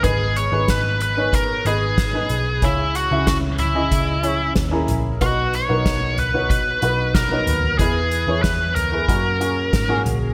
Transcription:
<<
  \new Staff \with { instrumentName = "Lead electric guitar" } { \time 4/4 \key gis \minor \tempo 4 = 93 gis'8 cis''8 b'8 b'8 ais'8 gis'4. | e'8 fis'8 fis'8 e'4. r4 | fis'8 cis''4 b'8 b'4 ais'4 | gis'4 b'8 ais'2 r8 | }
  \new Staff \with { instrumentName = "Grand piano" } { \time 4/4 \key gis \minor <b dis' gis' b'>8 r16 <b dis' gis' b'>8. r16 <b dis' gis' cis''>8 r16 <b dis' gis' b'>8 r16 <b dis' gis' b'>8 r16 | <cis' e' gis' cis''>8 r16 <cis' e' gis' e''>8. r16 <cis' e' gis' dis''>8 r16 <cis' e' gis' cis''>8 r16 <cis' e' gis' ais'>8 r16 | <b dis' fis' b'>8 r16 <b dis' fis' ais'>8. r16 <b dis' fis' cis''>8 r16 <b dis' fis' b'>8 r16 <b dis' fis' cis''>8 r16 | <b e' gis' b'>8 r16 <b e' gis' cis''>8. r16 <b e' gis' b'>16 <ais cis' fis' ais'>8 <ais cis' fis' gis'>8 r16 <ais cis' fis' gis'>8 r16 | }
  \new Staff \with { instrumentName = "Grand piano" } { \clef bass \time 4/4 \key gis \minor gis,4. r2 r8 | cis4. r2 r8 | b,4. r2 r8 | e4. r2 r8 | }
  \new Staff \with { instrumentName = "Picked electric bass" } { \clef bass \time 4/4 \key gis \minor gis,,8. gis,,16 gis,,4. gis,,4 b,,8 | cis,8. cis,16 cis,4 cis,4 dis,8 ais,,8 | b,,8. b,,16 b,,4. b,,4 dis,8 | e,8. e,16 e,4 fis,4 gis,8 ais,,8 | }
  \new DrumStaff \with { instrumentName = "Drums" } \drummode { \time 4/4 <hh bd>8 hh8 <hh bd sn>8 hh8 <hh bd>8 hh8 <hh bd sn>8 hh8 | <hh bd>8 hh8 <hh bd sn>8 <hh tomfh>8 <hh bd>8 hh8 <hh bd sn>8 <hh tomfh>8 | <hh bd>8 hh8 <hh bd sn>8 <hh tomfh>8 <hh bd>8 hh8 <hh bd sn>8 <hh tomfh>16 tomfh16 | <hh bd>8 hh8 <hh bd sn>8 <hh tomfh>8 <hh bd>8 hh8 <hh bd sn>8 <hh tomfh>8 | }
>>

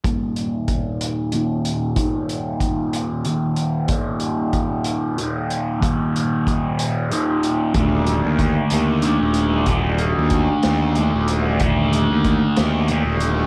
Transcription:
<<
  \new Staff \with { instrumentName = "Distorted electric guitar" } { \clef bass \time 6/8 \key d \phrygian \tempo 4. = 62 <ees, bes, ees>2 <ees, bes, ees>4 | <ees, bes, ees>2 <ees, bes, ees>4 | <ees, bes, ees>2 <ees, bes, ees>4 | <ees, bes, ees>2 <ees, bes, ees>4 |
<d a d'>2 <d a d'>4 | <d a d'>2 <d a d'>4 | <d a d'>2 <d a d'>4 | }
  \new Staff \with { instrumentName = "Picked electric bass" } { \clef bass \time 6/8 \key d \phrygian r2. | r2. | r2. | r2. |
ees,,8. ees,8 r16 ees,8. ees,,8. | ees,,8. ees,8 r16 ees,8. ees,,8. | ees,,8. ees,8 r16 ees,8. ees,,8. | }
  \new DrumStaff \with { instrumentName = "Drums" } \drummode { \time 6/8 <hh bd>8 hh8 <hh bd>8 hh8 hh8 hh8 | <hh bd>8 hh8 <hh bd>8 hh8 hh8 hh8 | <hh bd>8 hh8 <hh bd>8 hh8 hh8 hh8 | <hh bd>8 hh8 <hh bd>8 hh8 hh8 hh8 |
<hh bd>8 hh8 <hh bd>8 hh8 hh8 hh8 | <hh bd>8 hh8 <hh bd>8 <hh sn>8 hh8 hh8 | <hh bd>8 hh8 <hh bd>8 <hh sn>8 hh8 hh8 | }
>>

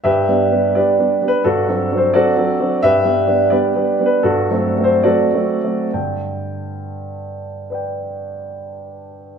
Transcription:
<<
  \new Staff \with { instrumentName = "Grand piano" } { \time 2/4 \key g \major \tempo 4 = 79 << { <g' b' e''>4 <g' b' d''>8. b'16 | <d' fis' a'>8. c''16 <fis' a' d''>4 | <g' b' e''>4 <g' b' d''>8. b'16 | <d' fis' a'>8. c''16 <fis' a' d''>4 |
g''2~ | g''2 | } \\ { r2 | r2 | r2 | r2 |
r2 | <b' d'' g''>2 | } >> }
  \new Staff \with { instrumentName = "Grand piano" } { \time 2/4 \key g \major \tuplet 3/2 { g,8 <g b d'>8 <g b d'>8 <g b d'>8 <g b d'>8 <g b d'>8 } | \tuplet 3/2 { g,8 <fis c' d'>8 <fis c' d'>8 <fis c' d'>8 <fis c' d'>8 <fis c' d'>8 } | \tuplet 3/2 { g,8 <g b d'>8 <g b d'>8 <g b d'>8 <g b d'>8 <g b d'>8 } | \tuplet 3/2 { g,8 <fis a c'>8 <fis a c'>8 <fis a c'>8 <fis a c'>8 <fis a c'>8 } |
<g, d>2~ | <g, d>2 | }
>>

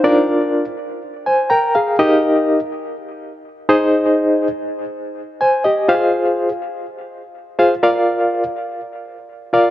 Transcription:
\new Staff \with { instrumentName = "Reed electric piano" } { \time 4/4 \key bes \mixolydian \tempo 4 = 123 << { <ees' c''>8 r2 <c'' aes''>8 <bes' g'' bes''>8 <aes' f''>8~ | <aes' f''>8 r2. r8 | r2. <c'' aes''>8 <g' ees''>8~ | <g' ees''>8 r2. r8 |
r1 | } \\ { <d' f' bes' d''>4~ <d' f' bes' d''>16 r2 r8. | <ees' g' bes' ees''>4~ <ees' g' bes' ees''>16 r2 r16 <ees' aes' c'' ees''>8~ | <ees' aes' c'' ees''>4 r2. | <f' g' aes' c'' f''>4~ <f' g' aes' c'' f''>16 r2 r16 <f' aes' c'' f''>8 |
<f' bes' d'' f''>4~ <f' bes' d'' f''>16 r2 r16 <f' bes' d'' f''>8 | } >> }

